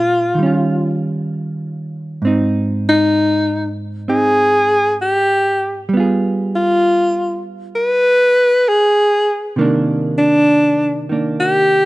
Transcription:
0.00 0.38 A#2 soft
0.00 0.38 G#3 soft
0.00 0.39 C#4 soft
0.00 0.40 F4 soft
0.00 1.00 F4 loud
0.35 2.21 D#3 soft
0.35 2.23 G3 soft
0.43 2.25 C#4 soft
0.43 2.26 F4 soft
2.22 5.91 G#2 soft
2.22 4.07 C4 medium
2.27 4.08 D#4 medium
2.89 3.75 D#4 medium
4.08 5.92 C4 soft
4.08 5.92 D#4 soft
4.08 4.97 G#4 medium
5.02 5.88 G4 medium
5.89 9.55 G3 soft
5.94 9.57 B3 soft
5.94 9.59 F4 soft
6.00 9.60 G#4 soft
6.56 7.41 F4 medium
7.76 8.70 B4 loud
8.69 9.58 G#4 medium
9.56 11.85 C3 soft
9.56 11.08 D#3 medium
9.56 11.10 A#3 medium
9.61 11.11 D4 medium
10.18 11.05 D4 medium
11.09 11.85 D#3 soft
11.09 11.85 A#3 soft
11.09 11.85 D4 soft
11.40 11.85 G4 loud

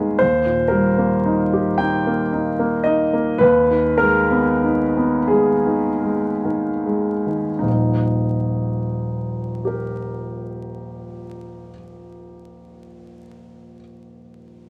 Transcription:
0.00 0.17 D#2 soft
0.00 0.24 D#3 soft
0.00 0.24 G#3 soft
0.00 0.24 B3 soft
0.00 0.24 D#4 soft
0.00 0.21 G#4 medium
0.19 3.36 D#2 soft
0.19 0.69 C5 medium
0.45 0.86 A#2 soft
0.68 1.13 G3 soft
0.68 1.78 A#4 medium
0.98 1.41 A#3 soft
1.26 1.69 D#4 soft
1.53 1.96 G4 soft
1.78 2.22 D#4 soft
1.78 2.84 G5 medium
2.07 2.48 A#3 soft
2.33 2.75 D#4 soft
2.59 3.01 A#3 soft
2.84 3.29 D#4 soft
2.84 3.39 D#5 medium
3.13 3.41 A#3 soft
3.38 7.60 D#2 medium
3.38 3.98 B4 medium
3.71 4.19 D#3 soft
3.98 4.50 G#3 soft
3.98 5.30 A#4 medium
4.31 4.83 B3 soft
4.64 5.17 D#4 soft
4.97 5.52 B3 soft
5.28 5.89 G#3 soft
5.28 7.63 G#4 medium
5.67 6.29 D#3 soft
6.04 6.70 G#3 soft
6.44 7.12 D#3 soft
6.86 7.49 G#3 soft
7.26 7.63 D#3 soft
7.59 11.72 D#1 soft
7.59 11.72 A#1 soft
7.59 11.69 D#4 soft
9.65 13.75 G4 soft
9.65 13.77 A#4 soft

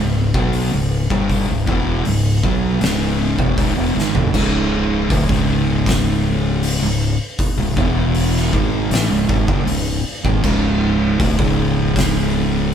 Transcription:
0.00 0.32 C#1 medium
0.00 0.27 C#2 medium
0.00 0.27 G#2 medium
0.34 0.70 B1 loud
0.34 0.71 B2 medium
0.34 0.72 F#3 loud
0.34 0.72 B3 loud
0.34 kick loud
0.53 open hi-hat medium
0.72 1.08 C#1 medium
0.72 1.03 C#2 medium
0.72 1.03 G#2 medium
1.10 1.46 G1 medium
1.10 1.47 G2 medium
1.10 1.48 D3 medium
1.10 1.48 G3 loud
1.10 kick loud
1.29 kick medium
1.29 open hi-hat soft
1.48 1.67 C#1 medium
1.48 1.66 C#2 medium
1.48 1.67 G#2 medium
1.67 2.03 E1 medium
1.67 2.04 E2 medium
1.67 2.05 B2 medium
1.67 2.05 E3 loud
1.67 kick loud
2.05 2.42 C#1 medium
2.05 2.36 C#2 medium
2.05 2.37 G#2 medium
2.05 open hi-hat medium
2.43 2.79 B1 medium
2.43 2.80 B2 medium
2.43 2.80 F#3 loud
2.43 2.81 B3 loud
2.43 kick medium
2.81 3.35 C#1 medium
2.81 3.37 C#2 loud
2.81 3.37 G#2 loud
2.81 3.38 C#3 loud
2.81 snare loud
2.81 open hi-hat medium
3.38 3.57 E1 loud
3.38 3.57 E2 medium
3.38 3.57 B2 loud
3.38 kick medium
3.58 3.76 C#1 medium
3.58 3.76 C#2 medium
3.58 3.76 G#2 loud
3.58 kick loud
3.58 open hi-hat medium
3.76 3.95 E1 loud
3.76 3.95 E2 medium
3.76 3.95 B2 loud
3.95 4.14 G#1 medium
3.95 4.14 G#2 loud
3.95 4.14 D#3 loud
3.95 snare medium
4.14 4.33 F#1 loud
4.14 4.32 F#2 medium
4.14 4.33 C#3 medium
4.14 floor tom medium
4.33 5.06 C#1 medium
4.33 5.09 C#2 medium
4.33 5.09 G#2 medium
4.33 5.09 C#3 medium
4.33 kick loud
4.33 crash loud
5.10 5.28 D1 loud
5.10 5.28 D2 loud
5.10 5.28 A2 medium
5.10 kick loud
5.10 open hi-hat medium
5.28 6.78 C#1 medium
5.28 6.80 C#2 loud
5.28 6.80 G#2 loud
5.28 6.80 C#3 loud
5.28 kick loud
5.32 snare soft
5.86 kick loud
5.86 snare loud
5.86 open hi-hat medium
6.63 open hi-hat medium
6.81 7.17 C#1 medium
6.81 7.12 C#2 medium
6.81 7.12 G#2 medium
7.39 kick loud
7.39 open hi-hat medium
7.57 7.75 C#1 medium
7.57 7.76 C#2 medium
7.57 7.76 G#2 medium
7.76 8.49 E1 medium
7.76 8.52 E2 medium
7.76 8.52 B2 loud
7.76 8.52 E3 loud
7.76 kick loud
8.15 open hi-hat medium
8.36 snare soft
8.53 8.89 G#1 loud
8.53 8.90 G#2 loud
8.53 8.90 D#3 loud
8.53 8.90 G#3 loud
8.53 kick medium
8.90 9.08 A1 medium
8.90 9.09 A2 loud
8.90 9.09 E3 loud
8.90 snare loud
8.90 open hi-hat medium
9.10 9.28 C#1 medium
9.10 9.29 C#2 medium
9.10 9.28 G#2 medium
9.29 9.47 G#1 loud
9.29 9.47 G#2 medium
9.29 9.47 D#3 loud
9.29 kick loud
9.48 9.66 F#1 loud
9.48 9.66 F#2 loud
9.48 9.67 C#3 loud
9.48 kick loud
9.67 10.03 C#1 medium
9.67 9.98 C#2 medium
9.67 9.98 G#2 medium
9.67 open hi-hat medium
10.24 10.42 G#1 loud
10.24 10.42 G#2 medium
10.24 10.42 D#3 medium
10.24 kick loud
10.43 11.16 C#1 loud
10.43 11.18 C#2 medium
10.43 11.19 G#2 medium
10.43 11.19 C#3 loud
10.43 kick loud
10.43 crash medium
11.20 11.38 D1 loud
11.20 11.38 D2 loud
11.20 11.38 A2 loud
11.20 kick loud
11.20 open hi-hat medium
11.39 12.74 C#1 loud
11.39 12.74 C#2 medium
11.39 12.74 G#2 medium
11.39 12.74 C#3 loud
11.39 kick loud
11.96 kick loud
11.96 snare loud
11.96 open hi-hat medium

